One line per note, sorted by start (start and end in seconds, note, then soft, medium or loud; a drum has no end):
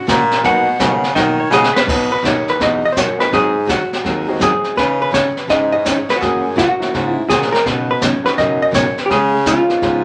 0.00 0.15 F#4 medium
0.07 0.43 A#2 loud
0.07 0.19 C#3 medium
0.07 0.19 E3 medium
0.07 0.19 A#3 medium
0.07 0.20 C#4 medium
0.07 0.20 F#4 medium
0.07 kick soft
0.07 snare medium
0.07 hi-hat pedal medium
0.31 snare soft
0.43 0.79 B2 medium
0.43 0.66 B2 medium
0.43 0.66 F#3 medium
0.43 0.65 A#3 medium
0.43 0.66 A#3 medium
0.43 0.65 B3 medium
0.43 0.65 D#4 medium
0.43 0.66 D#4 medium
0.43 0.65 F#4 medium
0.43 0.66 F#4 medium
0.43 0.65 A#4 medium
0.43 1.15 F#5 loud
0.43 brush sweep medium
0.43 kick soft
0.43 snare soft
0.79 0.91 B2 medium
0.79 1.15 C#3 medium
0.79 0.91 F#3 medium
0.79 1.00 A#3 medium
0.79 0.92 A#3 medium
0.79 1.01 B3 medium
0.79 1.01 D#4 medium
0.79 0.92 D#4 medium
0.79 1.01 F#4 medium
0.79 0.92 F#4 medium
0.79 1.01 A#4 medium
0.79 kick soft
0.79 snare medium
0.79 hi-hat pedal medium
1.04 snare soft
1.15 1.37 B2 medium
1.15 1.50 D#3 medium
1.15 1.38 F#3 medium
1.15 1.38 A#3 medium
1.15 1.38 D#4 medium
1.15 1.38 F#4 medium
1.15 1.38 D#5 medium
1.15 brush sweep soft
1.15 kick soft
1.15 snare soft
1.40 1.52 C#5 medium
1.50 1.63 B2 medium
1.50 1.73 C#3 loud
1.50 1.63 F#3 medium
1.50 1.63 A#3 medium
1.50 1.63 D#4 medium
1.50 1.64 F#4 medium
1.50 1.74 G#4 loud
1.50 1.75 D#5 loud
1.50 snare medium
1.50 hi-hat pedal medium
1.64 snare medium
1.73 1.81 C#3 soft
1.73 1.87 B4 medium
1.73 2.11 B4 loud
1.73 snare medium
1.86 2.09 B2 medium
1.86 2.17 B2 medium
1.86 2.09 F#3 medium
1.86 2.09 B3 medium
1.86 2.09 D#4 medium
1.86 2.10 F#4 medium
1.86 brush sweep soft
1.86 kick medium
1.86 snare soft
1.86 crash medium
2.12 2.26 B4 medium
2.22 2.55 D#2 medium
2.22 2.35 B2 medium
2.22 2.35 F#3 medium
2.22 2.35 B3 medium
2.22 2.35 D#4 medium
2.22 2.35 F#4 medium
2.22 2.49 C#5 medium
2.22 kick soft
2.22 snare medium
2.22 hi-hat pedal medium
2.48 2.60 B4 medium
2.48 snare soft
2.59 2.91 E2 medium
2.59 2.82 B2 medium
2.59 2.82 F#3 medium
2.59 2.82 B3 medium
2.59 2.82 D#4 medium
2.59 2.82 F#4 medium
2.59 2.84 D#5 medium
2.59 brush sweep soft
2.59 kick soft
2.59 snare soft
2.85 2.92 D#5 medium
2.92 3.27 F#2 medium
2.92 3.08 B2 medium
2.92 3.08 F#3 medium
2.92 2.97 C5 medium
2.92 kick soft
2.96 3.08 B3 medium
2.96 3.08 D#4 medium
2.96 3.08 F#4 medium
2.96 3.20 C#5 medium
2.96 snare medium
2.96 hi-hat pedal medium
3.18 3.30 G#3 medium
3.18 3.31 C4 medium
3.18 3.30 D#4 medium
3.18 3.30 F#4 medium
3.18 3.31 G#4 medium
3.18 3.32 B4 medium
3.18 snare soft
3.31 3.70 G#2 medium
3.31 3.54 D#3 medium
3.31 3.54 F#3 medium
3.31 3.54 C4 medium
3.31 3.54 D#4 medium
3.31 3.54 G#4 medium
3.31 3.69 G#4 loud
3.31 brush sweep medium
3.31 kick soft
3.31 snare soft
3.66 3.79 D#3 medium
3.66 3.79 F#3 medium
3.66 3.79 C4 medium
3.66 3.79 D#4 medium
3.66 4.42 F#4 medium
3.66 3.80 G#4 medium
3.66 kick soft
3.66 snare medium
3.66 hi-hat pedal medium
3.93 snare soft
4.03 4.62 D#2 medium
4.03 4.26 D#3 medium
4.03 4.26 F#3 medium
4.03 4.26 C4 medium
4.03 4.26 D#4 medium
4.03 4.26 G#4 medium
4.03 brush sweep soft
4.03 kick soft
4.03 snare soft
4.28 4.74 G#3 medium
4.28 4.74 C4 medium
4.28 4.74 D#4 medium
4.28 4.74 F#4 medium
4.28 4.74 G#4 medium
4.39 4.52 D#3 medium
4.39 4.52 F#3 medium
4.39 4.52 C4 medium
4.39 4.52 D#4 medium
4.39 4.52 G#4 medium
4.39 4.75 G#4 medium
4.39 kick soft
4.39 snare medium
4.39 hi-hat pedal medium
4.64 snare soft
4.76 4.98 C#3 medium
4.76 5.35 C#3 medium
4.76 4.98 E3 medium
4.76 4.99 D#4 medium
4.76 4.99 G#4 medium
4.76 5.01 B4 loud
4.76 brush sweep soft
4.76 kick soft
4.76 snare soft
5.02 5.14 B4 medium
5.11 5.23 C#3 medium
5.11 5.24 E3 medium
5.11 5.24 D#4 medium
5.11 5.24 G#4 medium
5.11 5.38 C#5 loud
5.11 kick soft
5.11 snare medium
5.11 hi-hat pedal medium
5.37 5.50 B4 medium
5.37 snare soft
5.47 6.07 G#2 medium
5.47 5.70 C#3 medium
5.47 5.70 E3 medium
5.47 5.70 D#4 medium
5.47 5.70 G#4 medium
5.47 5.71 D#5 medium
5.47 brush sweep soft
5.47 kick soft
5.47 snare soft
5.72 6.19 G#3 medium
5.72 6.19 C#4 medium
5.72 6.19 D#4 medium
5.72 6.19 E4 medium
5.72 6.19 G#4 medium
5.72 5.85 D#5 medium
5.85 5.96 C#3 medium
5.85 5.96 E3 medium
5.85 5.97 D#4 medium
5.85 5.97 G#4 medium
5.85 6.09 C#5 loud
5.85 kick soft
5.85 snare medium
5.85 hi-hat pedal medium
6.09 6.17 B4 medium
6.09 snare soft
6.16 6.21 F#4 medium
6.21 6.79 F#2 medium
6.21 6.43 C#3 medium
6.21 6.43 E3 medium
6.21 6.43 A#3 medium
6.21 6.43 C#4 medium
6.21 6.44 F#4 medium
6.21 6.58 G#4 medium
6.21 brush sweep soft
6.21 kick soft
6.21 snare soft
6.56 6.68 C#3 medium
6.56 6.68 E3 medium
6.56 6.68 A#3 medium
6.56 6.68 C#4 medium
6.56 6.69 F#4 medium
6.56 7.13 F#4 medium
6.56 kick soft
6.56 snare medium
6.56 hi-hat pedal medium
6.79 6.91 F#3 medium
6.79 6.92 A#3 medium
6.79 6.92 C#4 medium
6.79 6.92 E4 medium
6.79 6.92 F#4 medium
6.79 snare soft
6.93 7.24 G#2 medium
6.93 7.15 C#3 medium
6.93 7.16 E3 medium
6.93 7.16 A#3 medium
6.93 7.16 C#4 soft
6.93 7.16 F#4 medium
6.93 brush sweep medium
6.93 kick soft
6.93 snare soft
7.13 7.29 E4 medium
7.29 7.60 A#2 medium
7.29 7.41 C#3 medium
7.29 7.41 E3 medium
7.29 7.41 A#3 medium
7.29 7.41 C#4 medium
7.29 7.42 F#4 medium
7.29 7.53 G#4 medium
7.29 kick soft
7.29 snare medium
7.29 hi-hat pedal medium
7.42 snare soft
7.52 7.66 A#4 medium
7.52 snare soft
7.65 7.87 B2 medium
7.65 8.04 B2 medium
7.65 7.87 C#3 medium
7.65 7.88 F#3 medium
7.65 7.88 B3 medium
7.65 7.88 D#4 medium
7.65 7.89 B4 medium
7.65 7.88 B4 medium
7.65 brush sweep soft
7.65 kick soft
7.65 snare soft
7.91 8.02 B4 medium
8.01 8.13 B2 medium
8.01 8.13 C#3 medium
8.01 8.14 F#3 medium
8.01 8.13 B3 medium
8.01 8.13 D#4 medium
8.01 8.14 B4 medium
8.01 8.25 C#5 medium
8.01 kick soft
8.01 snare medium
8.01 hi-hat pedal medium
8.23 8.36 F#3 medium
8.23 8.36 B3 medium
8.23 8.36 C#4 medium
8.23 8.36 D#4 medium
8.23 8.36 F#4 medium
8.23 8.31 B4 medium
8.23 snare soft
8.37 8.95 F#2 medium
8.37 8.59 B2 medium
8.37 8.60 C#3 medium
8.37 8.59 F#3 medium
8.37 8.60 B3 medium
8.37 8.60 D#4 medium
8.37 8.60 B4 medium
8.37 8.61 D#5 medium
8.37 brush sweep soft
8.37 kick soft
8.37 snare soft
8.62 8.67 D#5 medium
8.71 8.84 B2 medium
8.71 8.84 C#3 medium
8.71 8.84 F#3 medium
8.71 8.85 B3 medium
8.71 8.85 D#4 medium
8.71 8.85 B4 medium
8.71 8.98 C#5 loud
8.71 kick soft
8.71 snare medium
8.71 hi-hat pedal medium
8.98 9.06 B4 medium
8.98 snare soft
9.06 9.68 C#3 loud
9.06 9.32 C#3 medium
9.06 9.10 G4 medium
9.10 9.32 G#3 medium
9.10 9.32 B3 medium
9.10 9.32 F4 medium
9.10 9.33 G#4 medium
9.10 9.47 G#4 medium
9.10 brush sweep soft
9.10 kick soft
9.10 snare soft
9.46 9.57 C#3 medium
9.46 9.57 G#3 medium
9.46 9.58 B3 medium
9.46 9.58 F4 medium
9.46 10.04 F4 medium
9.46 9.58 G#4 medium
9.46 kick soft
9.46 snare medium
9.46 hi-hat pedal medium
9.68 9.80 G#3 medium
9.68 9.80 B3 medium
9.68 9.81 C#4 medium
9.68 9.80 F4 medium
9.68 9.81 G#4 medium
9.68 snare soft
9.81 10.04 G#2 medium
9.81 10.03 C#3 medium
9.81 10.04 G#3 medium
9.81 10.04 B3 medium
9.81 10.04 F4 medium
9.81 10.04 G#4 medium
9.81 brush sweep soft
9.81 kick soft
9.81 snare soft